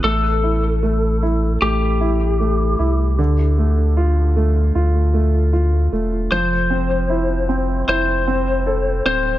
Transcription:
X:1
M:4/4
L:1/8
Q:1/4=77
K:Am
V:1 name="Lead electric guitar"
A4 G4- | G8 | c4 c3 c |]
V:2 name="Grand piano"
A, E A, E A, E A, E | D, A, F A, F A, F A, | F, C E C E C A C |]
V:3 name="Sub bass" clef=bass
A,,,4 A,,,3 C,, | D,,4 D,,3 E,,, | F,,,4 F,,,3 D,,, |]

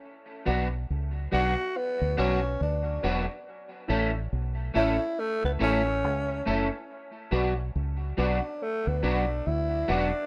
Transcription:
X:1
M:4/4
L:1/16
Q:"Swing 16ths" 1/4=70
K:Bdor
V:1 name="Upright piano"
z2 [FBd]2 z2 [FBd]2 z2 [FBd]2 z2 [FBd]2 | z2 [EAc]2 z2 [EAc]2 z2 [EAc]2 z2 [EAc]2 | z2 [FBd]2 z2 [FBd]2 z2 [FBd]2 z2 [FBd]2 |]
V:2 name="Clean electric guitar"
z2 [F,B,DF]2 z2 [F,B,DF]2 z2 [F,B,DF]2 z2 [F,B,DF]2 | z2 [A,CEA]2 z2 [A,CEA]2 z2 [A,CEA]2 z2 [A,CEA]2 | z2 [F,B,DF]2 z2 [F,B,DF]2 z2 [F,B,DF]2 z2 [F,B,DF]2 |]
V:3 name="Tenor saxophone"
z6 F2 B,2 C2 D3 z | z6 E2 A, B, C4 z2 | z6 D2 A, B, D2 E2 D2 |]
V:4 name="Fingered electric bass" clef=bass
z2 B,,,2 C,,2 B,,, z2 D,, B,,,2 D,,2 E,,, z | z2 A,,,2 B,,,2 A,,, z2 C,, A,,,2 C,,2 F,,, z | z2 B,,,2 C,,2 B,,, z2 D,, B,,,2 D,,2 E,,, z |]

